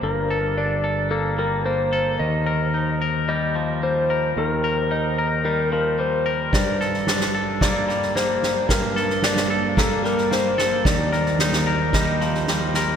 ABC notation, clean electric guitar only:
X:1
M:4/4
L:1/8
Q:1/4=111
K:Gm
V:1 name="Clean electric guitar"
[G,,G,B,] A D A B, G, B, A | E, B E B G, F, G, B | E, B E B G, F, G, B | G,, A D A B, G, B,2 |
G,, A D A B, G, B, A | E, B E B G, F, G, B |]